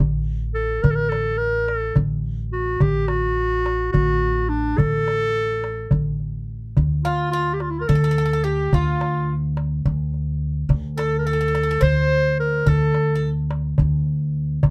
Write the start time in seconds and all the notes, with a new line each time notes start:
0.00 A1, darbuka dum
0.54 A4
0.82 A1 A#4, darbuka dum
0.91 A4
0.95 A#4
1.09 A4, darbuka tek
1.37 A#4
1.68 A4, darbuka tek
1.96 A1, darbuka dum
2.53 F#4
2.80 A1 G4, darbuka dum
3.08 F#4, darbuka tek
3.66 darbuka tek
3.92 A1 F#4, darbuka dum
4.49 D4
4.78 A1 A4, darbuka dum
5.08 darbuka tek
5.64 darbuka tek
5.91 A1, darbuka dum
6.20 darbuka ka
6.77 D2, darbuka dum
7.04 F4, darbuka tek
7.31 F4
7.54 G4
7.60 F4, darbuka tek
7.70 E4
7.78 F4 A#4
7.88 D2 A4, darbuka dum
7.95 A4
8.04 A4
8.11 A4
8.18 A4
8.26 A4
8.33 A4
8.44 G4
8.73 D2 F4, darbuka dum
9.01 darbuka tek
9.57 darbuka tek
9.85 D2, darbuka dum
10.14 darbuka ka
10.69 D2, darbuka dum
10.98 A4, darbuka tek
11.19 A#4
11.26 A4
11.33 A4
11.41 A4
11.48 A4
11.55 A4, darbuka tek
11.63 A4
11.71 A4
11.81 D2 C5, darbuka dum
12.11 darbuka ka
12.40 A#4
12.66 D2 A4, darbuka dum
12.94 darbuka tek
13.15 A4
13.51 darbuka tek
13.78 D2, darbuka dum
14.06 darbuka ka
14.63 D2, darbuka dum